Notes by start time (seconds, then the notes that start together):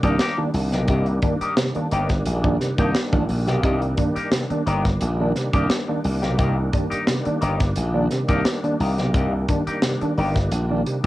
Already playing: D#3 G3 A#3 D4
0.03 C2 D#3 A#3 D4 D#4 G4, kick, closed hi-hat
0.19 A#3 D#4 G4, snare, closed hi-hat
0.37 D#3 A#3 D4
0.54 C2, muted clean electric guitar stroke, open hi-hat
0.72 B1 C3 A#3 D#4 G4, snare, closed hi-hat
0.88 C2 C3 A#3 D#4 G4, kick, closed hi-hat
1.06 A#3 D4, muted clean electric guitar stroke, closed hi-hat
1.22 D#3 A#3 D4, muted clean electric guitar stroke, kick, closed hi-hat
1.41 A#3 D#4 G4, muted slap bass stroke, closed hi-hat
1.57 C3, snare, closed hi-hat
1.75 D#3 A#3 D4, muted slap bass stroke, muted clean electric guitar stroke, closed hi-hat
1.91 G1 A#3 D#4 G4, closed hi-hat
2.09 muted clean electric guitar stroke, kick, snare, closed hi-hat
2.26 A#1, muted clean electric guitar stroke, closed hi-hat
2.44 D#3 A#3 D4, muted clean electric guitar stroke, kick
2.60 C3, snare, closed hi-hat
2.78 C2 D#3 A#3 D4 D#4 G4, kick, closed hi-hat
2.94 muted clean electric guitar stroke, snare, closed hi-hat
3.12 A1 D#3 A#3 D4, muted clean electric guitar stroke, kick, closed hi-hat
3.29 A#1, open hi-hat
3.47 B1 C3 A#3 D#4 G4, snare, closed hi-hat
3.63 C2 C3 A#3 D#4 G4, kick, closed hi-hat
3.81 A#3 D4, muted clean electric guitar stroke, closed hi-hat
3.97 D#3 A#3 D4, muted clean electric guitar stroke, kick, closed hi-hat
4.16 A#3 D#4 G4, muted slap bass stroke, closed hi-hat
4.32 C3, snare, closed hi-hat
4.50 D#3 A#3 D4, muted clean electric guitar stroke, muted slap bass stroke, closed hi-hat
4.67 G1 A#3 D4 D#4 G4, closed hi-hat
4.85 muted clean electric guitar stroke, kick, snare, closed hi-hat
5.01 A#1, muted clean electric guitar stroke, closed hi-hat
5.20 D#3 A#3 D4, muted clean electric guitar stroke
5.36 C3, snare, closed hi-hat
5.53 C2 D#3 A#3 D4 D#4 G4, kick, closed hi-hat
5.70 muted clean electric guitar stroke, snare, closed hi-hat
5.88 D#3 A#3 D4, muted clean electric guitar stroke
6.04 C2, open hi-hat
6.22 B1 C3 A#3 D#4 G4, snare, closed hi-hat
6.38 C2 C3 A#3 D#4 G4, kick, closed hi-hat
6.57 A#3 D4, muted clean electric guitar stroke
6.72 D#3 A#3 D4, muted clean electric guitar stroke, kick, closed hi-hat
6.90 A#3 D#4 G4, muted slap bass stroke, closed hi-hat
7.07 C3, snare, closed hi-hat
7.25 D#3 A#3 D4, muted clean electric guitar stroke, muted slap bass stroke, closed hi-hat
7.41 G1 A#3 D#4 G4, closed hi-hat
7.60 muted clean electric guitar stroke, kick, snare, closed hi-hat
7.76 A#1, muted clean electric guitar stroke, closed hi-hat
7.93 D#3 A#3 D4, muted clean electric guitar stroke
8.11 C3, snare, closed hi-hat
8.28 C2 D#3 A#3 D4 D#4 G4, kick, closed hi-hat
8.45 muted clean electric guitar stroke, snare, closed hi-hat
8.63 D#3 A#3 D4, muted clean electric guitar stroke, closed hi-hat
8.80 C2 A#3 D#4 G4, open hi-hat
8.98 B1 C3 A#3 D#4 G4, snare, closed hi-hat
9.14 C2 C3 A#3 D#4 G4, kick, closed hi-hat
9.33 A#3 D4, muted clean electric guitar stroke
9.48 D#3 A#3 D4, muted clean electric guitar stroke, kick, closed hi-hat
9.67 A#3 D#4 G4, muted slap bass stroke, closed hi-hat
9.82 C3, snare, closed hi-hat
10.01 D#3 A#3 D4, muted clean electric guitar stroke, muted slap bass stroke, closed hi-hat
10.18 G1 A#3 D#4 G4, open hi-hat
10.36 muted clean electric guitar stroke, kick, snare, closed hi-hat
10.51 A#1, muted clean electric guitar stroke, closed hi-hat
10.69 D#3 A#3 D4, muted clean electric guitar stroke
10.86 C3, closed hi-hat